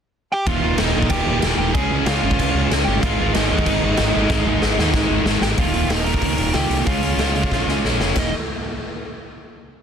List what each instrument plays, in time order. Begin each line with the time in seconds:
0.32 lead electric guitar G4 G5
0.46 fretless electric bass D#1, distorted electric guitar D#2 A#2 D#3, lead electric guitar F4 F5, kick, crash
0.63 fretless electric bass D#1, distorted electric guitar D#2 A#2 D#3
0.78 fretless electric bass D#1, distorted electric guitar D#2 A#2 D#3, lead electric guitar D#4 D#5, snare, crash
0.96 fretless electric bass A#1, distorted electric guitar D#2 A#2 D#3
1.02 kick
1.10 fretless electric bass D#1, distorted electric guitar D#2 A#2 D#3, lead electric guitar G4 G5, kick, crash
1.26 fretless electric bass D#1, distorted electric guitar D#2 A#2 D#3
1.42 fretless electric bass D#1, distorted electric guitar D#2 A#2 D#3, snare, crash
1.57 fretless electric bass D#1, distorted electric guitar D#3, lead electric guitar G5
1.61 distorted electric guitar D#2 A#2, lead electric guitar G4
1.74 fretless electric bass C#2, distorted electric guitar C#3, lead electric guitar G#4 G#5, kick, crash
1.78 distorted electric guitar G#3 C#4
1.90 fretless electric bass C#2, distorted electric guitar C#3 G#3 C#4
2.06 fretless electric bass C#2, distorted electric guitar C#3 G#3 C#4, lead electric guitar F4 F5, snare, crash
2.23 fretless electric bass G#1, distorted electric guitar C#3 G#3 C#4
2.31 kick
2.38 fretless electric bass C#2, distorted electric guitar C#3 G#3, kick, crash
2.43 distorted electric guitar C#4
2.54 fretless electric bass C#2, distorted electric guitar C#4
2.58 distorted electric guitar C#3 G#3
2.70 fretless electric bass C#2, distorted electric guitar C#3 G#3 C#4, snare, crash
2.85 fretless electric bass G1, lead electric guitar G4 G5
2.89 distorted electric guitar C#3 G#3 C#4
3.01 fretless electric bass G#1, distorted electric guitar G#2 D#3 G#3, lead electric guitar F4 F5, kick, crash
3.20 fretless electric bass G#1, distorted electric guitar G#2 D#3 G#3
3.33 fretless electric bass G#1, distorted electric guitar G#2 D#3 G#3, lead electric guitar D#4 D#5, snare, crash
3.49 fretless electric bass D#2, distorted electric guitar G#2 D#3 G#3, lead electric guitar D#4 D#5
3.59 kick
3.66 fretless electric bass G#1, distorted electric guitar G#2 D#3 G#3, kick, crash
3.83 fretless electric bass G#1, distorted electric guitar G#2 D#3 G#3
3.97 fretless electric bass G#1, distorted electric guitar G#2 D#3 G#3, snare, crash
4.16 fretless electric bass G#1, distorted electric guitar G#2 D#3 G#3
4.30 fretless electric bass G#1, distorted electric guitar G#2 D#3 G#3, kick, snare
4.47 fretless electric bass G#1, distorted electric guitar G#2 D#3 G#3
4.61 fretless electric bass G#1, distorted electric guitar G#2 D#3 G#3, snare
4.78 fretless electric bass D#2, distorted electric guitar G#2 D#3 G#3, snare
4.93 fretless electric bass G#1, distorted electric guitar G#2 D#3 G#3, kick, snare
5.09 fretless electric bass G#1, distorted electric guitar G#2 D#3 G#3
5.25 fretless electric bass G#1, distorted electric guitar G#2 D#3 G#3, snare
5.41 fretless electric bass G#1, distorted electric guitar G#2 D#3 G#3, lead electric guitar G4 G5, snare
5.57 fretless electric bass D#1, distorted electric guitar D#2 A#2 D#3, lead electric guitar F4 F5, kick, open hi-hat
5.74 distorted electric guitar D#2 A#2 D#3, open hi-hat
5.90 fretless electric bass D#1, distorted electric guitar D#2 A#2 D#3, lead electric guitar D#4 D#5, snare, open hi-hat
6.04 distorted electric guitar D#2 A#2 D#3, lead electric guitar A#4 A#5, open hi-hat
6.14 kick
6.21 fretless electric bass C#2, distorted electric guitar D#2 A#2 D#3, kick, open hi-hat
6.38 fretless electric bass D#1, distorted electric guitar D#2 A#2 D#3, open hi-hat
6.53 fretless electric bass C#2, distorted electric guitar D#2 A#2 D#3, lead electric guitar G5, snare, open hi-hat
6.58 lead electric guitar G4
6.70 fretless electric bass C2, distorted electric guitar D#2 A#2 D#3, open hi-hat
6.86 fretless electric bass C#2, distorted electric guitar C#3 G#3 C#4, lead electric guitar F4 F5, kick, open hi-hat
7.02 distorted electric guitar C#3 G#3 C#4, open hi-hat
7.17 fretless electric bass C#2, distorted electric guitar C#3 G#3 C#4, snare, open hi-hat
7.35 distorted electric guitar C#3 G#3 C#4, open hi-hat
7.43 kick
7.51 fretless electric bass A#1, distorted electric guitar C#3 G#3 C#4, kick, snare
7.67 fretless electric bass C#2, distorted electric guitar C#3 G#3 C#4, snare
7.84 fretless electric bass A#1, distorted electric guitar C#3 G#3 C#4, snare
7.99 fretless electric bass F1, distorted electric guitar C#3 G#3 C#4, snare
8.16 fretless electric bass D#1, distorted electric guitar D#2 A#2 D#3, lead electric guitar D#5, kick, snare, splash